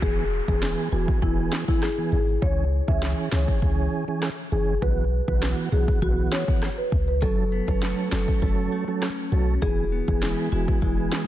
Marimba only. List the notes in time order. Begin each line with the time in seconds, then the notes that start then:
0.02 G#4
0.48 G#4
0.92 F#4
1.22 E4
1.68 E4
1.82 G#4
2.12 G#4
2.42 C#5
2.88 E5
3.32 C#5
4.52 G#4
4.82 B4
5.28 B4
5.72 G#4
6.02 F#4
6.32 C#5
6.78 B4
7.08 B4
7.22 A4
7.68 B4
8.12 A4
9.32 F#4
9.62 G#4
10.08 G#4
10.52 F#4
10.82 E4